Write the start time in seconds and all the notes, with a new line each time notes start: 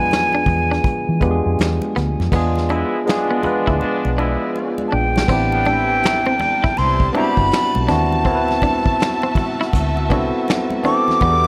Already playing: E2 F3 G#3 B3 D4 F4 G#4 B4 G#5
0.11 finger snap, snare, closed hi-hat, muted conga
0.32 D4, muted conga
0.46 E2, muted clean electric guitar stroke, kick, closed hi-hat, high conga, low conga
0.71 D4, snare
0.84 kick, closed hi-hat, muted conga, high conga
1.09 E3
1.20 E2 G#3 B3 D4 F4 G4, kick, closed hi-hat, high conga
1.31 G#4
1.46 F2
1.59 E2, finger snap, snare, closed hi-hat, muted conga
1.82 muted conga, high conga
1.96 D2 B3, snare, closed hi-hat
2.20 F2, snare, low conga
2.31 E2 F3 G#3 B3 D4 F4 G#4 D5, kick, crash, muted conga
2.55 snare, muted conga
2.69 G#3 B3 D4 E4, closed hi-hat, high conga
3.06 G#3 B3 D4 F4 G#4, snare, closed hi-hat, muted conga
3.10 finger snap
3.31 B3
3.42 G#3 B3 D4 F4 B4, muted clean electric guitar stroke, muted fingered electric bass stroke, closed hi-hat, high conga, low conga
3.67 D2 E4, kick
3.80 G#3 B3 D4, muted fingered electric bass stroke, muted conga, high conga
4.05 B1, muted conga
4.17 G#3 B3 D4 E4, high conga
4.56 muted conga
4.78 muted conga, high conga
4.88 A5
4.92 A#1 D4 G5
5.16 snare, low conga
5.28 A1 G3 B3 C4 D4 E4 G4 A4 A5, kick, crash
5.52 G3 B3 D4, muted conga
5.65 E3 C4 D4 E4, ride, high conga
6.03 finger snap, snare, ride, muted conga
6.26 C4, muted conga
6.40 muted clean electric guitar stroke, ride, high conga, low conga
6.64 E4, kick, snare
6.77 C2 E3 C4 E4 C6, ride, muted conga, high conga
7.00 kick
7.13 B3 C4 D4 E4 G4 B5, ride, high conga
7.17 F#4
7.37 G1, kick
7.51 finger snap, snare, ride, muted conga
7.75 B1, muted conga, high conga
7.87 D#2 B3 C4 D4 E4 F#4 A5, snare, ride, low conga
8.12 low conga
8.24 D2 B3 C4 E4 F#4 E5, kick, ride
8.28 A#4
8.35 B4
8.48 snare, muted conga
8.62 D4, kick, ride, high conga
8.86 kick
9.00 finger snap, snare, ride
9.22 C4, muted conga
9.35 muted clean electric guitar stroke, kick, open hi-hat, ride, high conga, low conga
9.61 E4, snare
9.73 D2, kick, hi-hat pedal, ride, muted conga, high conga
9.97 muted conga
10.09 C2 B3 C4 D4 E4 F#4, kick, ride, high conga
10.13 A4
10.48 finger snap, snare, ride, muted conga
10.70 high conga
10.83 B3 C4 D4 E4 F#4 D6, ride, low conga
10.87 A4
11.08 snare, low conga
11.21 E2 G3 B3 D4 F#4 G4 G#4 E5 D6, kick, ride, muted conga
11.31 A4